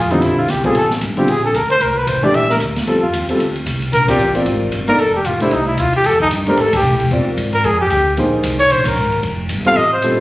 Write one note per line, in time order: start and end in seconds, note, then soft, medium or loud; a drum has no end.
0.00 0.21 F2 medium
0.00 0.13 F4 medium
0.11 0.46 D3 medium
0.11 0.47 G3 medium
0.11 0.47 C4 medium
0.11 0.23 D#4 medium
0.11 0.47 F4 medium
0.11 ride soft
0.21 0.47 A#1 medium
0.21 0.40 E4 medium
0.21 kick soft
0.21 ride medium
0.39 0.52 F4 medium
0.48 0.62 C2 medium
0.48 0.65 G4 medium
0.48 kick soft
0.48 snare soft
0.48 hi-hat pedal medium
0.48 ride medium
0.63 0.74 G3 medium
0.63 0.74 C4 medium
0.63 0.74 F4 medium
0.63 0.75 G#4 medium
0.63 0.75 A4 medium
0.63 muted upright bass stroke soft
0.63 kick soft
0.63 ride soft
0.75 1.00 A1 medium
0.75 0.86 A4 medium
0.75 kick soft
0.75 ride medium
0.90 snare soft
1.01 1.27 G1 medium
1.01 kick soft
1.01 hi-hat pedal medium
1.01 ride medium
1.17 1.27 D3 medium
1.17 1.27 G3 medium
1.17 1.27 C4 medium
1.17 1.28 F4 medium
1.17 1.31 G4 medium
1.17 ride soft
1.27 1.53 A#1 medium
1.27 1.44 G#4 medium
1.27 kick soft
1.27 ride medium
1.45 1.58 A4 medium
1.54 1.80 D2 medium
1.54 1.70 A#4 medium
1.54 kick soft
1.54 hi-hat pedal medium
1.54 ride medium
1.70 1.83 C5 loud
1.70 ride soft
1.81 2.06 C2 medium
1.81 1.99 A#4 medium
1.81 kick soft
1.81 ride soft
1.98 2.10 B4 medium
2.07 2.33 A1 medium
2.07 2.25 C5 medium
2.07 kick soft
2.07 hi-hat pedal medium
2.07 ride medium
2.23 2.33 E3 medium
2.23 2.33 A3 medium
2.23 2.33 D4 medium
2.23 2.34 G4 medium
2.23 2.37 D5 medium
2.33 2.59 A#1 medium
2.33 2.50 E5 loud
2.33 kick soft
2.33 ride medium
2.50 2.57 A#4 medium
2.50 snare soft
2.60 2.86 D2 medium
2.60 kick soft
2.60 hi-hat pedal medium
2.60 ride medium
2.76 snare soft
2.76 ride soft
2.86 3.12 F2 medium
2.86 3.00 G3 soft
2.86 3.01 C4 soft
2.86 3.01 F4 soft
2.86 3.01 A4 medium
2.86 kick soft
2.86 ride soft
3.02 3.27 F4 medium
3.13 3.27 D#2 medium
3.13 kick soft
3.13 hi-hat pedal medium
3.13 ride medium
3.28 3.39 G3 medium
3.28 3.39 C4 medium
3.28 3.39 F4 medium
3.28 3.40 A4 medium
3.28 muted upright bass stroke soft
3.28 ride soft
3.39 3.65 D2 medium
3.39 kick soft
3.39 ride soft
3.56 ride soft
3.66 3.92 C2 medium
3.66 kick soft
3.66 hi-hat pedal medium
3.66 ride medium
3.82 ride soft
3.92 4.17 A#1 medium
3.92 4.07 A#4 loud
3.92 kick soft
3.92 ride medium
4.08 4.18 C4 medium
4.08 4.18 F4 medium
4.08 4.33 G4 medium
4.08 4.19 A#4 medium
4.08 4.19 D5 medium
4.08 kick medium
4.08 ride medium
4.18 4.44 A1 medium
4.18 hi-hat pedal medium
4.35 4.70 C4 medium
4.35 4.70 F4 medium
4.35 4.71 A#4 medium
4.35 4.71 D5 medium
4.35 ride soft
4.45 4.71 G#1 medium
4.45 kick soft
4.45 ride medium
4.72 4.97 G1 medium
4.72 kick soft
4.72 hi-hat pedal soft
4.72 ride medium
4.88 4.98 A#3 medium
4.88 4.98 D#4 medium
4.88 4.98 A4 medium
4.88 5.01 A#4 loud
4.88 4.98 D5 medium
4.88 ride soft
4.98 5.24 F1 medium
4.98 5.15 A4 medium
4.98 kick soft
4.98 ride medium
5.15 5.27 G4 medium
5.24 5.51 A1 medium
5.24 5.41 F4 medium
5.24 kick soft
5.24 hi-hat pedal medium
5.24 ride medium
5.40 5.50 A3 medium
5.40 5.51 D4 medium
5.40 5.54 E4 medium
5.40 5.51 G4 medium
5.40 5.51 C5 medium
5.40 ride soft
5.51 5.77 C2 medium
5.51 5.67 D#4 medium
5.51 kick soft
5.51 ride medium
5.68 5.81 E4 medium
5.78 6.03 D#2 medium
5.78 5.94 F4 medium
5.78 kick soft
5.78 hi-hat pedal medium
5.78 ride medium
5.93 6.08 G4 medium
5.93 ride soft
6.04 6.30 F2 medium
6.04 6.21 A4 medium
6.04 kick soft
6.04 ride medium
6.20 6.28 D#4 medium
6.20 kick medium
6.31 6.56 G2 medium
6.31 kick soft
6.31 hi-hat pedal medium
6.31 ride medium
6.46 6.57 A3 medium
6.46 6.57 D4 medium
6.46 6.57 G4 medium
6.46 6.61 A#4 medium
6.46 6.58 C5 medium
6.46 ride soft
6.57 6.82 A2 medium
6.57 6.74 A4 medium
6.57 kick soft
6.57 ride medium
6.73 7.10 G4 medium
6.73 kick medium
6.73 ride medium
6.83 6.92 C3 medium
6.83 hi-hat pedal medium
6.92 7.00 A2 medium
7.00 7.10 F2 medium
7.00 ride soft
7.11 7.20 A#2 medium
7.11 7.84 C4 medium
7.11 7.84 F4 soft
7.11 7.85 A#4 medium
7.11 7.85 D5 medium
7.11 kick soft
7.11 ride soft
7.20 7.28 G#2 medium
7.28 7.37 F2 medium
7.37 7.63 G#2 medium
7.37 kick soft
7.37 hi-hat pedal medium
7.37 ride medium
7.53 7.67 A#4 medium
7.53 ride soft
7.64 7.90 F2 medium
7.64 7.80 G#4 medium
7.64 kick soft
7.64 ride medium
7.80 8.15 G4 medium
7.90 8.16 D2 medium
7.90 kick soft
7.90 hi-hat pedal soft
7.90 ride medium
8.17 8.43 A#1 medium
8.17 8.90 A#3 medium
8.17 8.91 D#4 medium
8.17 8.91 G#4 medium
8.17 8.91 C5 medium
8.17 kick soft
8.17 ride soft
8.43 8.69 C2 medium
8.43 kick soft
8.43 hi-hat pedal medium
8.43 ride medium
8.59 8.73 C#5 loud
8.59 ride soft
8.70 8.96 A#1 medium
8.70 8.86 C5 loud
8.70 kick soft
8.70 ride medium
8.85 9.21 A#4 medium
8.85 kick medium
8.85 ride medium
8.96 9.22 G#1 medium
8.96 hi-hat pedal medium
9.12 ride soft
9.23 9.49 F1 medium
9.23 kick soft
9.23 ride medium
9.49 9.75 G1 medium
9.49 kick soft
9.49 hi-hat pedal medium
9.49 ride medium
9.65 9.75 G3 medium
9.65 9.76 C4 medium
9.65 9.76 F4 medium
9.65 9.76 A4 medium
9.65 9.78 F5 loud
9.65 ride soft
9.76 10.02 A1 medium
9.76 9.92 D#5 loud
9.76 kick soft
9.76 ride medium
9.93 10.20 C5 medium
10.02 10.20 A#1 medium
10.02 10.20 G3 medium
10.02 10.20 C4 medium
10.02 10.20 F4 medium
10.02 10.20 A4 medium
10.02 kick soft
10.02 hi-hat pedal medium
10.02 ride medium